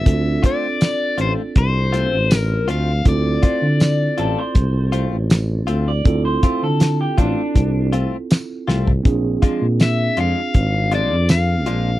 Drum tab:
HH |x-x-x-x-x-x-x-x-|x-x-x-x-x-x-x-x-|x-x-x-x-x-x-x---|x-x-x-x-x-x-x-x-|
TB |----x-------x---|----x-------x---|----x-------x---|----x-------x---|
SD |----o-------o---|----o-------o---|----o-------o-o-|----o-------o---|
FT |----------------|----------------|---------------o|----------------|
BD |o-o-----o-------|o-o-----o-------|o-o---o-o-------|o-o-----o-------|